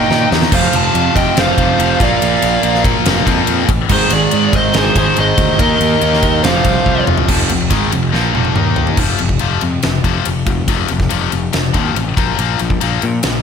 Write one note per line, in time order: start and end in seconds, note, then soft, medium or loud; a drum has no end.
0.00 0.51 D#3 medium
0.00 0.52 A#3 loud
0.00 0.53 D#4 medium
0.00 0.28 D#5 loud
0.00 0.29 G5 loud
0.09 0.24 A#2 medium
0.09 0.51 D#3 medium
0.09 0.52 A#3 medium
0.09 0.52 D#4 medium
0.09 snare medium
0.32 0.46 E2 loud
0.32 snare loud
0.42 snare medium
0.52 0.66 F1 medium
0.52 1.56 F2 medium
0.52 1.57 C3 medium
0.52 1.57 F3 loud
0.52 0.73 C5 medium
0.52 0.75 F5 medium
0.52 kick loud
0.52 crash loud
0.73 0.88 F1 loud
0.73 1.14 F5 medium
0.73 1.14 A5 loud
0.73 ride medium
0.94 1.08 F2 medium
0.94 ride medium
1.16 1.30 F1 loud
1.16 1.36 D#5 loud
1.16 1.36 G5 medium
1.16 kick medium
1.16 ride medium
1.36 1.51 F1 loud
1.36 1.99 F2 medium
1.36 1.99 C3 medium
1.36 2.00 F3 medium
1.36 1.97 C5 medium
1.36 snare medium
1.36 ride medium
1.41 2.04 F5 medium
1.58 1.72 F1 medium
1.58 1.77 F2 medium
1.58 1.79 C3 medium
1.58 1.78 F3 medium
1.58 kick medium
1.58 ride medium
1.79 1.93 F1 loud
1.79 1.99 F2 medium
1.79 2.00 C3 medium
1.79 2.00 F3 medium
1.79 ride loud
2.00 2.14 A#1 loud
2.00 3.04 A#2 medium
2.00 3.05 F3 medium
2.00 3.06 A#3 loud
2.00 2.82 D5 medium
2.00 kick loud
2.00 ride medium
2.05 2.83 F5 loud
2.22 2.36 A#1 medium
2.22 ride loud
2.42 2.57 A#1 loud
2.42 ride medium
2.63 2.91 A#1 medium
2.63 ride medium
2.75 snare soft
2.84 3.69 A#2 medium
2.84 3.69 F3 medium
2.84 3.68 A#3 loud
2.84 kick loud
2.84 ride medium
3.05 3.20 F1 medium
3.05 3.25 A#2 medium
3.05 3.26 F3 medium
3.05 3.25 A#3 medium
3.05 snare loud
3.05 ride medium
3.26 3.41 F2 medium
3.26 3.69 A#2 medium
3.26 3.68 F3 medium
3.26 3.68 A#3 medium
3.26 kick medium
3.26 ride medium
3.47 3.62 F2 loud
3.47 ride loud
3.69 3.83 A1 loud
3.69 kick loud
3.69 ride medium
3.89 4.04 G#1 loud
3.89 4.95 G#2 medium
3.89 4.95 D#3 medium
3.89 4.95 G#3 loud
3.89 4.13 C5 medium
3.89 kick loud
3.89 crash loud
3.93 4.12 G#4 medium
4.10 4.25 G#1 loud
4.10 4.56 D5 loud
4.10 ride medium
4.15 4.53 G#4 medium
4.31 4.47 G#2 medium
4.31 ride loud
4.53 4.67 G#1 loud
4.53 4.75 C5 medium
4.53 4.77 D#5 loud
4.53 kick loud
4.53 ride medium
4.74 4.89 G#1 medium
4.74 5.58 G#2 medium
4.74 5.57 D#3 medium
4.74 4.96 C5 medium
4.74 snare medium
4.74 ride medium
4.78 5.60 G#3 loud
4.78 4.96 G#4 medium
4.96 5.10 G#1 medium
4.96 5.15 G#2 medium
4.96 5.17 D#3 medium
4.96 5.16 G#3 medium
4.96 5.17 G#4 medium
4.96 5.18 C5 medium
4.96 kick medium
4.96 ride medium
5.16 5.32 G#1 loud
5.16 5.58 G#2 medium
5.16 5.58 D#3 medium
5.16 5.59 G#3 medium
5.16 5.58 C5 medium
5.16 5.60 D#5 loud
5.16 ride medium
5.38 5.52 D2 loud
5.38 kick loud
5.38 ride medium
5.59 5.74 D#2 medium
5.59 6.43 D#3 loud
5.59 6.44 A#3 loud
5.59 6.44 D#4 loud
5.59 6.40 A#4 medium
5.59 6.41 D#5 loud
5.59 kick loud
5.59 ride loud
5.81 5.95 D#2 loud
5.81 ride medium
6.01 6.46 D#2 medium
6.01 ride medium
6.13 snare soft
6.23 kick medium
6.23 ride medium
6.43 6.58 F1 medium
6.43 7.27 F2 medium
6.43 7.27 C3 medium
6.43 7.28 F3 medium
6.43 7.03 C5 medium
6.43 7.04 F5 medium
6.43 snare loud
6.43 ride medium
6.65 6.79 C2 medium
6.65 kick medium
6.65 ride medium
6.86 7.00 C2 loud
6.86 kick medium
7.07 7.22 F1 medium
7.07 mid tom medium
7.18 floor tom loud
7.28 7.49 F1 medium
7.28 7.48 F2 loud
7.28 7.49 C3 loud
7.28 7.50 F3 loud
7.28 kick loud
7.28 crash loud
7.50 7.70 F1 medium
7.50 7.67 F2 medium
7.50 7.67 C3 medium
7.50 ride medium
7.70 7.91 G#1 medium
7.70 7.91 G#2 medium
7.70 7.92 D#3 medium
7.70 7.92 G#3 loud
7.70 kick medium
7.70 ride medium
7.92 8.13 F1 medium
7.92 8.10 F2 medium
7.92 8.10 C3 medium
7.92 ride medium
8.12 8.34 A#1 medium
8.12 8.34 A#2 medium
8.12 8.34 F3 medium
8.12 8.34 A#3 loud
8.12 snare medium
8.34 8.55 F1 medium
8.34 8.55 F2 medium
8.34 8.55 C3 medium
8.34 8.56 F3 medium
8.34 high tom medium
8.45 high tom medium
8.56 8.96 D#2 medium
8.56 8.98 D#3 medium
8.56 8.98 A#3 medium
8.56 8.99 D#4 medium
8.56 mid tom medium
8.76 floor tom loud
8.87 floor tom medium
8.97 9.13 F1 medium
8.97 9.18 F2 medium
8.97 9.19 C3 medium
8.97 9.19 F3 loud
8.97 kick loud
8.97 crash loud
9.19 9.36 F1 loud
9.19 9.39 F2 medium
9.19 9.39 C3 medium
9.19 ride medium
9.29 kick medium
9.39 9.57 F1 medium
9.39 9.61 F2 medium
9.39 9.61 C3 medium
9.39 9.61 F3 loud
9.39 ride medium
9.61 9.82 F2 medium
9.61 9.78 F2 medium
9.61 9.82 C3 medium
9.61 ride medium
9.83 10.00 F1 medium
9.83 10.03 F2 medium
9.83 10.03 C3 medium
9.83 snare loud
9.83 ride medium
10.04 10.20 F1 medium
10.04 10.24 F2 medium
10.04 10.25 C3 medium
10.04 10.25 F3 loud
10.04 kick medium
10.04 ride medium
10.25 10.42 F1 medium
10.25 10.45 F2 medium
10.25 10.45 C3 medium
10.25 ride medium
10.47 10.62 F1 medium
10.47 10.67 F2 medium
10.47 10.67 C3 medium
10.47 kick medium
10.47 ride medium
10.68 10.84 F1 medium
10.68 10.88 F2 medium
10.68 10.88 C3 medium
10.68 10.89 F3 medium
10.68 kick loud
10.68 ride medium
10.88 11.06 F1 loud
10.88 11.08 F2 medium
10.88 11.09 C3 medium
10.88 ride medium
11.00 kick medium
11.00 snare soft
11.09 11.28 F1 medium
11.09 11.30 F2 medium
11.09 11.31 C3 loud
11.09 11.31 F3 loud
11.09 ride medium
11.32 11.48 F1 medium
11.32 11.52 F2 medium
11.32 11.52 C3 medium
11.32 ride medium
11.53 11.70 F1 medium
11.53 11.72 F2 medium
11.53 11.73 C3 medium
11.53 snare medium
11.53 ride medium
11.73 11.90 D#2 medium
11.73 11.94 F2 medium
11.73 11.94 C3 loud
11.73 11.95 F3 medium
11.73 kick medium
11.73 ride medium
11.95 12.11 A1 medium
11.95 12.15 F2 medium
11.95 12.15 C3 medium
11.95 ride medium
12.17 12.33 A#1 medium
12.17 12.37 A#2 medium
12.17 12.37 F3 medium
12.17 12.38 A#3 medium
12.17 kick loud
12.17 ride medium
12.38 12.54 A#1 loud
12.38 12.59 A#2 medium
12.38 12.59 F3 loud
12.38 12.59 A#3 medium
12.38 ride medium
12.59 12.76 A#1 medium
12.59 12.79 A#2 medium
12.59 12.80 F3 medium
12.59 ride medium
12.70 kick medium
12.81 12.97 A#1 medium
12.81 13.01 A#2 medium
12.81 13.01 F3 medium
12.81 13.02 A#3 loud
12.81 ride medium
13.02 13.22 A#2 medium
13.02 13.19 A#2 medium
13.02 13.22 F3 medium
13.02 ride medium
13.23 13.39 A#1 medium
13.23 13.42 A#2 medium
13.23 13.42 F3 medium
13.23 snare loud
13.23 ride medium